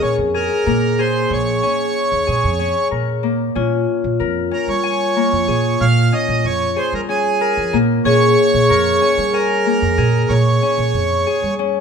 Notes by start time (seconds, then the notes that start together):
Already playing: A#3 G#4 A#4
0.02 A#2 C#4 C#5
0.18 F2
0.34 G#4 A#4
0.66 A#2 A#3
0.99 G#4 C5
1.31 A#1 C#5
1.63 C#4
2.12 D#2
2.27 A#2 G#4
2.44 F2
2.59 C#4
2.91 A#2 A#4
3.23 A#3
3.55 A#2 C#4 F4
4.04 A#2
4.20 F2 A#4
4.51 C#4 A#4
4.68 G3 C#5
4.83 G#5
5.16 A#3
5.33 F2
5.48 A#2 G#4
5.81 A#2 F5
6.12 C#4 D#5
6.29 A#2
6.45 F2 C#5
6.76 G#4 C5
6.93 G3 A#4
7.09 C#4 G#4
7.41 A#4
7.57 F2
7.73 A#2 A#3
8.05 A#2 C#4 G#4 C#5
8.54 A#2
8.70 F2 A#4
9.02 C#4
9.18 G3
9.33 A#4 G#5
9.66 A#3
9.82 F2
9.98 A#2 G#4
10.29 A#2 C#5
10.62 C#4
10.78 A#2
10.94 F2
11.27 G#4
11.42 G3
11.59 C#4